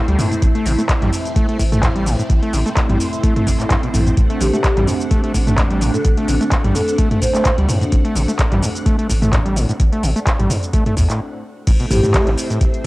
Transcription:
Already playing: A3 C4 E4 C5
0.08 D2 G3, closed hi-hat
0.19 A2, mid tom, open hi-hat, shaker
0.32 A2, closed hi-hat, shaker
0.42 A1 A2, kick, closed hi-hat, shaker
0.55 A3, closed hi-hat
0.66 A1 B2, open hi-hat, shaker
0.78 A3, closed hi-hat, shaker
0.89 kick, clap, closed hi-hat, shaker
1.02 A1 G3, clap, closed hi-hat, mid tom
1.13 open hi-hat, shaker
1.25 closed hi-hat, shaker
1.36 A3, kick, closed hi-hat, shaker
1.49 A3, closed hi-hat
1.59 A1 A2, kick, open hi-hat, shaker
1.72 A3, closed hi-hat, mid tom, shaker
1.83 A2, kick, clap, closed hi-hat, shaker
1.95 G3, closed hi-hat
2.06 A2, open hi-hat, shaker
2.19 A2, closed hi-hat, shaker
2.30 A1 A2, kick, closed hi-hat, shaker
2.42 A3, closed hi-hat
2.53 A1 B2, open hi-hat, shaker
2.66 A3, closed hi-hat, shaker
2.77 kick, clap, closed hi-hat, shaker
2.89 A1 G3, closed hi-hat, mid tom
3.00 open hi-hat, shaker
3.13 closed hi-hat, shaker
3.23 A3, kick, closed hi-hat, shaker
3.36 A3, closed hi-hat, mid tom
3.47 A1 A2, kick, open hi-hat, shaker
3.60 A2, clap, closed hi-hat, shaker
3.70 G2, kick, clap, closed hi-hat, shaker
3.83 B2, closed hi-hat
3.94 A1 A2, mid tom, open hi-hat, shaker
4.07 A2, closed hi-hat, shaker
4.17 A1 A2 D4 F#5, kick, closed hi-hat, shaker
4.30 A3, closed hi-hat
4.41 A1 B2 G4, open hi-hat, shaker
4.53 A3, closed hi-hat, shaker
4.64 kick, clap, closed hi-hat, shaker
4.77 A1 G3, clap, closed hi-hat, mid tom
4.87 G2, open hi-hat, shaker
5.00 closed hi-hat, shaker
5.11 A3, kick, closed hi-hat, shaker
5.24 A3, closed hi-hat
5.34 A1 A2, kick, open hi-hat, shaker
5.47 A3, closed hi-hat, mid tom, shaker
5.58 A2, kick, clap, closed hi-hat, shaker
5.71 G3, closed hi-hat
5.81 A2, open hi-hat, shaker
5.94 A2 A4, closed hi-hat, shaker
6.05 A1 A2, kick, closed hi-hat, shaker
6.17 A3, closed hi-hat
6.28 A1 B2, open hi-hat, shaker
6.41 A3, closed hi-hat, shaker
6.52 kick, clap, closed hi-hat, shaker
6.64 A1 G3, closed hi-hat, mid tom
6.75 G2 A4, open hi-hat, shaker
6.88 A4, closed hi-hat, shaker
6.98 A3, kick, closed hi-hat, shaker
7.11 A3, closed hi-hat, mid tom
7.22 A2 C5, kick, open hi-hat, shaker
7.34 A3 C5, clap, closed hi-hat, shaker
7.45 A2, kick, clap, closed hi-hat, shaker
7.58 D2 G3, closed hi-hat
7.68 A2, mid tom, open hi-hat, shaker
7.81 A2, closed hi-hat, shaker
7.92 A1 A2, kick, closed hi-hat, shaker
8.05 A3, closed hi-hat
8.15 A1 B2, open hi-hat, shaker
8.28 A3, closed hi-hat, shaker
8.39 kick, clap, closed hi-hat, shaker
8.52 A1 G3, clap, closed hi-hat, mid tom
8.62 G2, open hi-hat, shaker
8.75 closed hi-hat, shaker
8.86 A3, kick, closed hi-hat, shaker
8.98 A3, closed hi-hat
9.09 A1 A2, kick, open hi-hat, shaker
9.22 A3, closed hi-hat, mid tom, shaker
9.33 A2, kick, clap, closed hi-hat, shaker
9.45 G3, closed hi-hat
9.56 A2, open hi-hat, shaker
9.69 A2, closed hi-hat, shaker
9.80 A1 A2, kick, closed hi-hat, shaker
9.92 A3, closed hi-hat
10.03 A1 B2, open hi-hat, shaker
10.16 A3, closed hi-hat, shaker
10.27 kick, clap, closed hi-hat, shaker
10.39 A1 G3, closed hi-hat, mid tom
10.50 G2, mid tom, open hi-hat, shaker
10.63 closed hi-hat, shaker
10.73 A3, kick, closed hi-hat, shaker
10.86 A3, closed hi-hat, mid tom
10.97 E2 A2, kick, open hi-hat, shaker
11.09 A2, clap, closed hi-hat, shaker
11.67 A1 A2 A3 C4 E4 C5, kick, closed hi-hat, crash, shaker
11.80 B2, closed hi-hat
11.90 A1 A2 G4, mid tom, open hi-hat, shaker
12.03 A2, closed hi-hat, mid tom, shaker
12.14 A3, kick, clap, closed hi-hat, shaker
12.27 A1 A2, clap, closed hi-hat
12.38 open hi-hat, shaker
12.50 A2, closed hi-hat, shaker
12.61 A1, kick, closed hi-hat, shaker
12.74 closed hi-hat

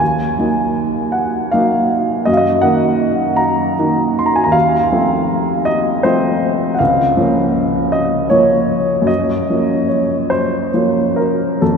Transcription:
Already playing: D#2
0.00 G#5
0.38 F#3 A#3 D#4
1.12 F#5
1.52 F#3 A#3 D#4 F5
2.25 F#2 D#5
2.33 F5
2.37 D#5
2.62 D#3 A#3 D#4 F#5
3.36 A#5
3.79 D#3 A#3 D#4
4.19 C6
4.26 A#5
4.36 G#5
4.44 D#2 A#5
4.52 F5
4.92 F3 A3 C4
5.65 D#5
6.03 F3 A3 C4 C5
6.75 F#5
6.79 C#2 F5
7.17 F3 A#3 C#4
7.92 D#5
8.30 F3 A#3 C#4 C#5
9.02 F#2
9.07 D#5
9.50 F3 A#3 C#4
9.88 C#5
10.30 C5
10.74 F3 A#3 C#4
11.16 A#4
11.61 F2 A4

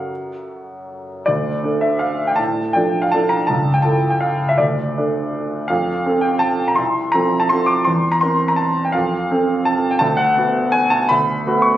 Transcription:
Already playing: F#2 F#3 C#4 A4 F5 F#5
1.26 D2 D5
1.63 D4 A4
1.81 E5
1.99 F5
2.27 G5
2.36 A2 A5
2.73 F3 D4 A4 G5
3.02 F5
3.12 F3 D4 A4 A5
3.29 A#5
3.47 C#2 A5
3.74 G5
3.82 E4 A4 A5
4.10 G5
4.21 F5
4.49 E5
4.58 D2 D5
4.98 D4 A4
5.68 F2 F5
6.06 C4 A4
6.21 G5
6.39 A5
6.68 A#5
6.76 C2 C6
7.12 F3 C4 A4 A#5
7.40 A5
7.49 F3 C4 A4 C6
7.66 D6
7.85 E2 C6
8.12 A#5
8.21 C4 A#4 C6
8.48 A#5
8.56 A5
8.85 G5
8.92 F2 F5
9.31 C4 A4
9.65 A5
9.91 G5
9.99 D2 A5
10.17 F#5
10.37 B3 F#4
10.72 G#5
10.90 A5
11.09 D2 B5
11.46 A3 B3 F#4
11.62 C#6

